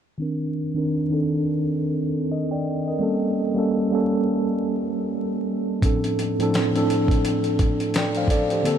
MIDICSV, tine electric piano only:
0, 0, Header, 1, 2, 480
1, 0, Start_track
1, 0, Tempo, 705882
1, 124, Time_signature, 4, 2, 24, 8
1, 5972, End_track
2, 0, Start_track
2, 0, Title_t, "Tine electric piano"
2, 0, Program_c, 0, 4
2, 121, Note_on_c, 0, 51, 64
2, 132, Note_on_c, 0, 60, 59
2, 139, Note_on_c, 0, 62, 64
2, 149, Note_on_c, 0, 70, 78
2, 241, Control_c, 0, 64, 127
2, 358, Note_off_c, 0, 51, 0
2, 363, Note_off_c, 0, 60, 0
2, 367, Note_off_c, 0, 62, 0
2, 372, Note_off_c, 0, 70, 0
2, 504, Note_on_c, 0, 51, 79
2, 514, Note_on_c, 0, 60, 71
2, 522, Note_on_c, 0, 62, 71
2, 530, Note_on_c, 0, 70, 87
2, 646, Note_off_c, 0, 51, 0
2, 651, Note_off_c, 0, 60, 0
2, 655, Note_off_c, 0, 62, 0
2, 659, Note_off_c, 0, 70, 0
2, 744, Note_on_c, 0, 51, 79
2, 755, Note_on_c, 0, 60, 64
2, 762, Note_on_c, 0, 62, 65
2, 771, Note_on_c, 0, 69, 80
2, 1354, Note_off_c, 0, 51, 0
2, 1359, Note_off_c, 0, 60, 0
2, 1362, Note_off_c, 0, 62, 0
2, 1367, Note_off_c, 0, 69, 0
2, 1574, Note_on_c, 0, 75, 69
2, 1577, Note_on_c, 0, 70, 45
2, 1705, Note_off_c, 0, 75, 0
2, 1706, Note_off_c, 0, 70, 0
2, 1707, Note_on_c, 0, 79, 59
2, 1712, Note_on_c, 0, 74, 55
2, 1935, Note_off_c, 0, 79, 0
2, 1937, Note_off_c, 0, 74, 0
2, 1956, Note_on_c, 0, 75, 56
2, 1963, Note_on_c, 0, 70, 46
2, 2032, Note_on_c, 0, 55, 69
2, 2041, Note_on_c, 0, 58, 65
2, 2050, Note_on_c, 0, 61, 68
2, 2051, Control_c, 0, 64, 0
2, 2057, Note_on_c, 0, 69, 77
2, 2180, Note_off_c, 0, 75, 0
2, 2183, Note_off_c, 0, 70, 0
2, 2185, Control_c, 0, 64, 127
2, 2274, Note_off_c, 0, 55, 0
2, 2278, Note_off_c, 0, 58, 0
2, 2282, Note_off_c, 0, 61, 0
2, 2286, Note_off_c, 0, 69, 0
2, 2411, Note_on_c, 0, 55, 77
2, 2419, Note_on_c, 0, 58, 76
2, 2428, Note_on_c, 0, 61, 68
2, 2438, Note_on_c, 0, 69, 85
2, 2559, Note_off_c, 0, 55, 0
2, 2564, Note_off_c, 0, 58, 0
2, 2568, Note_off_c, 0, 61, 0
2, 2573, Note_off_c, 0, 69, 0
2, 2659, Note_on_c, 0, 55, 74
2, 2668, Note_on_c, 0, 58, 74
2, 2677, Note_on_c, 0, 61, 66
2, 2684, Note_on_c, 0, 69, 81
2, 3271, Note_off_c, 0, 55, 0
2, 3275, Note_off_c, 0, 58, 0
2, 3280, Note_off_c, 0, 61, 0
2, 3284, Note_off_c, 0, 69, 0
2, 3953, Note_on_c, 0, 45, 73
2, 3959, Note_on_c, 0, 53, 64
2, 3968, Note_on_c, 0, 60, 67
2, 3973, Control_c, 0, 64, 0
2, 3973, Note_on_c, 0, 62, 66
2, 3981, Note_on_c, 0, 69, 79
2, 4104, Control_c, 0, 64, 127
2, 4194, Note_off_c, 0, 45, 0
2, 4197, Note_off_c, 0, 53, 0
2, 4201, Note_off_c, 0, 60, 0
2, 4204, Note_off_c, 0, 62, 0
2, 4208, Note_off_c, 0, 69, 0
2, 4342, Note_on_c, 0, 45, 80
2, 4352, Note_on_c, 0, 53, 75
2, 4357, Note_on_c, 0, 60, 73
2, 4364, Note_on_c, 0, 62, 72
2, 4371, Note_on_c, 0, 69, 81
2, 4485, Note_off_c, 0, 45, 0
2, 4490, Note_off_c, 0, 53, 0
2, 4493, Note_off_c, 0, 60, 0
2, 4496, Note_off_c, 0, 62, 0
2, 4499, Note_off_c, 0, 69, 0
2, 4580, Note_on_c, 0, 45, 75
2, 4587, Note_on_c, 0, 53, 64
2, 4593, Note_on_c, 0, 60, 71
2, 4602, Note_on_c, 0, 62, 69
2, 4606, Note_on_c, 0, 69, 86
2, 5192, Note_off_c, 0, 45, 0
2, 5195, Note_off_c, 0, 53, 0
2, 5198, Note_off_c, 0, 60, 0
2, 5202, Note_off_c, 0, 62, 0
2, 5205, Note_off_c, 0, 69, 0
2, 5411, Note_on_c, 0, 79, 53
2, 5412, Note_on_c, 0, 74, 52
2, 5543, Note_off_c, 0, 74, 0
2, 5543, Note_off_c, 0, 79, 0
2, 5557, Note_on_c, 0, 77, 59
2, 5562, Note_on_c, 0, 72, 57
2, 5644, Note_off_c, 0, 77, 0
2, 5647, Note_off_c, 0, 72, 0
2, 5650, Note_on_c, 0, 74, 69
2, 5652, Note_on_c, 0, 69, 64
2, 5783, Note_off_c, 0, 74, 0
2, 5784, Note_off_c, 0, 69, 0
2, 5795, Note_on_c, 0, 72, 52
2, 5799, Note_on_c, 0, 67, 50
2, 5868, Note_on_c, 0, 50, 76
2, 5875, Note_on_c, 0, 58, 67
2, 5886, Note_on_c, 0, 60, 68
2, 5892, Control_c, 0, 64, 0
2, 5894, Note_on_c, 0, 69, 80
2, 5972, Note_off_c, 0, 50, 0
2, 5972, Note_off_c, 0, 58, 0
2, 5972, Note_off_c, 0, 60, 0
2, 5972, Note_off_c, 0, 67, 0
2, 5972, Note_off_c, 0, 69, 0
2, 5972, Note_off_c, 0, 72, 0
2, 5972, End_track
0, 0, End_of_file